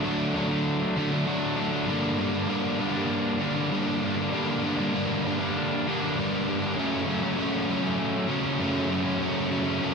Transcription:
0.03 D3 F#3 A3 D4
0.33 D3 F#3 A3 D4
0.49 F#3 A3 D4
0.96 D3 F#3 A3 D4
1.12 F#3 A3 D4
1.27 D3 F#3 A3 D4
1.57 D3 F#3 A3 D4
1.72 F#3 A3 D4
1.87 G2 D3 G3 A#3 D4
2.18 D3 G3 A#3 D4
2.33 G3 A#3 D4
2.48 G2 D3 G3 A#3 D4
2.79 D3 G3 A#3 D4
2.94 G3 A#3 D4
3.39 D3 G3 A#3 D4
3.56 G3 A#3 D4
3.71 G2 D3 G3 A#3 D4
4.02 D3 G3 A#3 D4
4.16 G3 A#3 D4
4.31 G2 D3 G3 A#3 D4
4.62 D3 G3 A#3 D4
4.77 G3 A#3 D4
4.93 G2 D3 G3 A#3 D4
5.25 D3 G3 A#3 D4
5.40 G3 A#3 D4
5.87 D3 G3 A#3 D4
6.01 G3 A#3 D4
6.17 G2 D3 G3 A#3 D4
6.47 D3 G3 A#3 D4
6.62 G3 A#3 D4
6.76 F#2 C#3 F#3 A3 C#4
7.07 C#3 F#3 A3 C#4
7.22 F#3 A3 C#4
7.37 F#2 C#3 F#3 A3 C#4
7.68 C#3 F#3 A3 C#4
7.83 F#3 A3 C#4
8.27 C#3 F#3 A3 C#4
8.43 F#3 A3 C#4
8.59 F#2 C#3 F#3 A3 C#4
8.89 C#3 F#3 A3 C#4
9.04 F#3 A3 C#4
9.20 F#2 C#3 F#3 A3 C#4
9.50 C#3 F#3 A3 C#4
9.64 F#3 A3 C#4
9.81 F#2 C#3 F#3 A3 C#4

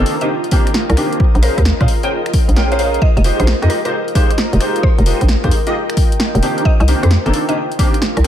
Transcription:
Already playing: F4 A#4 D#5 G5
0.00 D#3 A#3 C4 D4 A4
0.06 open hi-hat
0.21 D#3 A#3 C4 D4 G4 D#5, closed hi-hat
0.44 closed hi-hat
0.51 D#3 A#3 C4 D4 G4, kick, open hi-hat
0.67 finger snap, closed hi-hat
0.74 snare
0.90 C2 A#4, closed hi-hat
0.97 D#3 A#3 C4 D4 G4, finger snap, open hi-hat
1.13 closed hi-hat
1.20 kick
1.35 A#1, closed hi-hat
1.43 C#4 G#4 A#4 C5 F5, open hi-hat
1.58 D#2 A#4, kick, closed hi-hat
1.65 snare
1.81 A#2 C#4 G#4 A#4 C5 F5, finger snap, kick, closed hi-hat
1.88 open hi-hat
2.03 C#4 G#4 A#4 C5 G5, closed hi-hat
2.26 finger snap, closed hi-hat
2.34 kick, open hi-hat
2.49 A#1, closed hi-hat
2.56 C#4 G#4 A#4 C5 G5, snare
2.72 C#4 G#4 A#4 C5 F5, closed hi-hat
2.79 C#4 G#4 A#4 C5 F5, open hi-hat
2.94 closed hi-hat
3.02 D#5, kick
3.17 F1 D#5, closed hi-hat
3.24 G#3 D#4 F4 G4 C5, open hi-hat
3.40 A#1 C5, closed hi-hat
3.47 snare
3.62 F2 G#3 D#4 F4 G4 D#5, finger snap, closed hi-hat
3.70 A#4, open hi-hat
3.79 G5
3.85 G#3 D#4 F4 G4 A#4 C5, closed hi-hat
4.08 closed hi-hat
4.15 G#3 D#4 F4 G4 C5, kick, open hi-hat
4.30 finger snap, closed hi-hat
4.38 snare
4.53 F1, closed hi-hat
4.61 G#3 D#4 F4 G4 C5, finger snap, open hi-hat
4.76 closed hi-hat
4.83 C5, kick
4.98 F1, closed hi-hat
5.06 G#3 D#4 F4 G4 C5, open hi-hat
5.21 A#1, kick, closed hi-hat
5.28 snare
5.44 F2 G#3 D#4 F4 G4 C5, finger snap, kick, closed hi-hat
5.51 open hi-hat
5.67 G#3 D#4 F4 G4 D#5, closed hi-hat
5.90 finger snap, closed hi-hat
5.97 kick, open hi-hat
6.12 closed hi-hat
6.20 snare
6.35 F1, closed hi-hat
6.42 D#3 A#3 C4 D4 F4 G4, open hi-hat
6.58 A#4, closed hi-hat
6.65 D#5, kick
6.80 C2 D#5, closed hi-hat
6.88 D#3 A#3 C4 D4 G4 D#5, open hi-hat
7.03 F2 C5, closed hi-hat
7.11 snare
7.26 G1 D#3 A#3 C4 D4 A4, finger snap, closed hi-hat
7.34 open hi-hat
7.48 D#3 A#3 C4 D4 G4 D#5, closed hi-hat
7.72 closed hi-hat
7.79 D#3 A#3 C4 D4 G4, kick, open hi-hat
7.94 finger snap, closed hi-hat
8.02 snare
8.17 C2 A#4, closed hi-hat

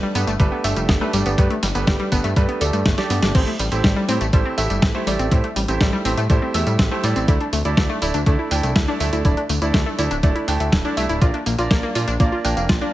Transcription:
Already playing: A3 D4 G4 B4
0.03 G3
0.15 G2 A3 B3 D4 G4 B4, open hi-hat, tambourine
0.27 G1 A3, closed hi-hat, tambourine
0.40 G1 G3 A3 D4 G4 B4, kick, closed hi-hat, tambourine
0.52 B3
0.64 G1 A3 D4 G4 E5, open hi-hat, tambourine
0.76 F1 G3, closed hi-hat, tambourine
0.89 G1 B3, kick, snare, closed hi-hat, tambourine
1.01 A3 D4 G4 B4
1.13 G1 G3 A3 D4 G4 D5, open hi-hat, tambourine
1.26 G1 B3, closed hi-hat, tambourine
1.38 G2 A3 B3 D4 G4 B4, kick, closed hi-hat, tambourine
1.50 A3, closed hi-hat
1.63 G1 G3, snare, open hi-hat, tambourine
1.75 G1 A3 B3 D4 G4 B4, closed hi-hat, tambourine
1.87 G1 G3, kick, snare, closed hi-hat, tambourine
1.99 G3, closed hi-hat
2.12 G1 A3 B3 D4 G4 B4, kick, open hi-hat, tambourine
2.24 G2 A3, closed hi-hat, tambourine
2.36 G2 G3 A3 D4 G4 B4, kick, closed hi-hat, tambourine
2.49 B3, closed hi-hat
2.61 D2 A3 D4 G4 A4 D5, open hi-hat, tambourine
2.73 G2 A3, closed hi-hat, tambourine
2.86 G1 A3, kick, snare, closed hi-hat, tambourine
2.98 A3 D4 G4 D5, snare, closed hi-hat
3.10 G2 B3, open hi-hat, tambourine
3.22 G1 D4, snare, closed hi-hat, tambourine
3.35 A1 A3 C4 E4 G4 C5, kick, closed hi-hat, tambourine, crash
3.47 A3, closed hi-hat
3.59 A1 G3, open hi-hat, tambourine
3.72 A1 A3 C4 E4 G4 C5, closed hi-hat, tambourine
3.84 A1 G3, kick, snare, closed hi-hat, tambourine
3.96 G3
4.08 A2 A3 C4 E4 G4 C5, open hi-hat, tambourine
4.21 A1 A3, closed hi-hat, tambourine
4.33 A1 G3 A3 E4 G4 C5, kick, closed hi-hat, tambourine
4.46 C4
4.58 A1 A3 E4 G4 E5, open hi-hat, tambourine
4.70 G1 G3, closed hi-hat, tambourine
4.82 A1 C4, kick, snare, closed hi-hat, tambourine
4.95 A3 E4 G4 C5
5.07 A1 G3 A3 E4 G4 D5, open hi-hat, tambourine
5.19 A1 C4, closed hi-hat, tambourine
5.31 A2 A3 C4 E4 G4 C5, kick, closed hi-hat, tambourine
5.44 A3, closed hi-hat
5.56 A1 G3, open hi-hat, tambourine
5.68 A1 A3 C4 E4 G4 C5, closed hi-hat, tambourine
5.81 A1 G3, kick, snare, closed hi-hat, tambourine
5.93 G3
6.05 A1 A3 C4 E4 G4 C5, open hi-hat, tambourine
6.17 A2 A3, closed hi-hat, tambourine
6.30 A2 G3 A3 E4 G4 C5, kick, closed hi-hat, tambourine
6.42 C4
6.54 E2 A3 E4 G4 E5, open hi-hat, tambourine
6.67 A2 G3, closed hi-hat, tambourine
6.79 A1 C4, kick, snare, closed hi-hat, tambourine
6.91 A3 E4 G4 C5
7.03 A2 G3 A3 E4 G4 D5, open hi-hat, tambourine
7.16 A1 C4, closed hi-hat, tambourine
7.28 D2 A3 D4 E4 D5, kick, closed hi-hat, tambourine
7.40 D4, closed hi-hat
7.53 D2 A3, open hi-hat, tambourine
7.65 D2 A3 D4 E4 D5, closed hi-hat, tambourine
7.77 D2 A3, kick, snare, closed hi-hat, tambourine
7.90 A3
8.02 D1 A3 D4 E4 D5, open hi-hat, tambourine
8.14 D2 D4, closed hi-hat, tambourine
8.26 D2 A3 D4 E4 D5, kick, closed hi-hat, tambourine
8.39 E4
8.51 D2 A3 D4 E4 G5, open hi-hat, tambourine
8.63 C2 A3, closed hi-hat, tambourine
8.76 D2 E4, kick, snare, closed hi-hat, tambourine
8.88 A3 D4 E4 D5
9.00 D2 A3 D4 E4 E5, open hi-hat, tambourine
9.12 D2 E4, closed hi-hat, tambourine
9.25 D1 A3 D4 E4 D5, kick, closed hi-hat, tambourine
9.37 D4, closed hi-hat
9.49 D2 A3, open hi-hat, tambourine
9.62 D2 A3 D4 E4 D5, closed hi-hat, tambourine
9.74 D2 A3, kick, snare, closed hi-hat
9.86 A3
9.98 D2 A3 D4 E4 D5, open hi-hat, tambourine
10.11 D1 D4, closed hi-hat, tambourine
10.23 D1 A3 D4 E4 D5, kick, closed hi-hat, tambourine
10.35 E4, closed hi-hat
10.48 D2 A3 D4 E4 G5, open hi-hat, tambourine
10.60 D2 A3, closed hi-hat, tambourine
10.72 D1 E4, kick, snare, closed hi-hat, tambourine
10.85 A3 D4 E4 D5
10.97 C2 A3 D4 E4 E5, open hi-hat, tambourine
11.09 D1 E4, closed hi-hat, tambourine
11.21 A#1 A#3 D4 F4 D5, kick, closed hi-hat, tambourine
11.34 D4, closed hi-hat
11.46 A#1 A#3, open hi-hat, tambourine
11.58 A#1 A#3 D4 F4 D5, closed hi-hat, tambourine
11.71 A#1 A#3, kick, snare, closed hi-hat, tambourine
11.83 A#3
11.95 A#2 A#3 D4 F4 D5, open hi-hat, tambourine
12.08 A#1 D4, closed hi-hat, tambourine
12.20 A#1 A#3 D4 F4 D5, kick, closed hi-hat, tambourine
12.32 F4
12.44 A#1 A#3 D4 F4 G5, open hi-hat, tambourine
12.57 F1 A#3, closed hi-hat, tambourine
12.69 A#1 F4, kick, snare, closed hi-hat
12.81 A#3 D4 F4 D5

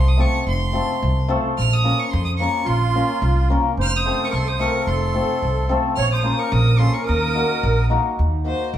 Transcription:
Already playing: C2
0.08 D#6
0.17 A3 C4 F4 A4 C#6
0.47 F1 C6
0.73 A3 C4 F4 A4
1.02 C2
1.28 A3 C4 F4 A4
1.58 A#1 F6
1.73 D#6
1.84 A#3 C#4 F4 A#4
1.99 C#6
2.11 F2 C6
2.25 D#6
2.37 A#3 C#4 F4 C#6
2.42 A#4
2.64 A#1 F4 C6
2.95 A#3 C#4 F4 A#4
3.22 C2
3.50 A#3 C#4 F4 A#4
3.77 F1 C5
3.81 F6
3.94 C5 D#6
4.05 A3 C4 F4 A4
4.22 A#4 C5 C#6 D#6
4.28 A#4 C#6
4.32 C2 A4 C6
4.47 C5 D#6
4.59 A3 C4 F4 A4 A#4 C#6
4.87 F1 A4 C6
5.14 A3 C4 F4 A4
5.42 C2
5.69 A3 C4 F4 A4
5.96 A#1 C#5 F6
6.12 C5 D#6
6.24 A#3 C#4 F4 A#4
6.39 A#4 C#6
6.52 A#1 A#4 D#6
6.78 A#3 C#4 F4 A4 A#4 C6
6.93 A#4 C#6
7.05 D#2 A#4 D#6
7.35 A#3 D#4 F#4 A#4
7.63 A#1
7.90 A#3 D#4 F#4 A#4
8.19 D#2
8.44 A#3 D#4 F#4 A#4 C5
8.74 A#1 A#4

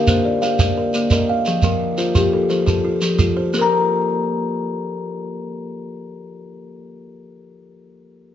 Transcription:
Already playing: A#4 F5
0.07 A#3 C5, shekere
0.25 D5
0.42 A#3 F5, shekere
0.59 D5, shekere
0.78 A#4
0.94 A#3, shekere
1.10 A#4 D#5, shekere
1.30 F5
1.45 F3, shekere
1.62 F3 A#4, shekere
1.98 F4 C5, shekere
2.15 F3 G4, shekere
2.33 A4
2.50 F3 C5, shekere
2.66 A4, shekere
2.85 F4
3.01 F3, shekere
3.19 F4, shekere
3.37 C5
3.54 A#3 A#4, shekere
3.59 A#4 A#5

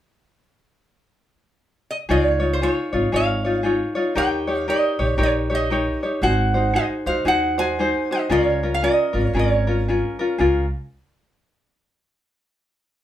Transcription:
1.91 D#5
2.09 C#2 D#4 F4 G#4 C#5
2.40 D#4 F4 C#5
2.53 C5
2.62 D#4 F4 G#4 C#5
2.93 G#1 D#4 F4 C#5
3.12 G#1 D#4 F4 G#4 C#5 F5
3.45 D#4 F4 C#5
3.63 D#4 F4 G#4 C#5
3.95 D#4 F4 C#5
4.15 D#2 D#4 G4 A#4 C#5 G5
4.47 D#4 G4 C#5
4.60 F5
4.68 D#4 G4 A#4 C#5 D#5
4.99 A#1 D#4 G4 C#5
5.18 A#1 D#4 G4 A#4 C#5
5.23 C#5
5.50 D#4 G4 C#5
5.55 D#5
5.70 D#4 G4 A#4 C#5
6.03 D#4 G4 C#5
6.22 G#1 D#4 F#4 G#4 C5 F#5
6.54 D#4 F#4 C5
6.74 D#4 F#4 G#4 C5 D#5
7.06 D#2 D#4 F#4 C5 F5
7.25 D#2 D#4 F#4 G#4 C5 F#5
7.58 D#4 F#4 C5 G#5
7.79 D#4 F#4 G#4 C5
8.11 D#4 F#4 C5 D#5
8.29 C#2 C#4 F4 G#4 A#4 C#5
8.63 C#4 F4 A#4
8.74 F5
8.82 C#4 F4 G#4 A#4 D#5
9.13 G#1 C#4 F4 A#4
9.26 C#5
9.33 G#1 C#4 F4 G#4 A#4
9.39 C#5
9.67 C#4 F4 A#4
9.88 C#4 F4 G#4 A#4
10.19 C#4 F4 A#4
10.38 C#2 C#4 F4 G#4 A#4

